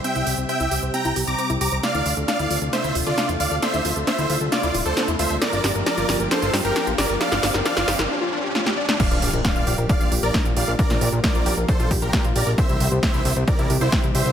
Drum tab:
CC |----------------|----------------|----------------|----------------|
HH |xxoxxxoxxxoxxxox|xxoxxxoxxxoxxxox|xxoxxxoxxxoxxxox|xxoxxxoxxxoxxxox|
SD |----------------|o---o---o---o---|o---o---o---o---|o-o-o-o-o-o-o-o-|
BD |----------------|----------------|----------------|----------------|

CC |----------------|x---------------|----------------|----------------|
HH |xxo-xxox--------|xxoxxxoxxxoxxxo-|xxoxxxoxxxoxxxo-|xxoxxxoxxxoxxxox|
SD |oooooooo----oo-o|----o-------o---|-o--o-------o---|----o-------o---|
BD |----------------|o---o---o---o---|o---o---o-o-o---|o---o---o---o---|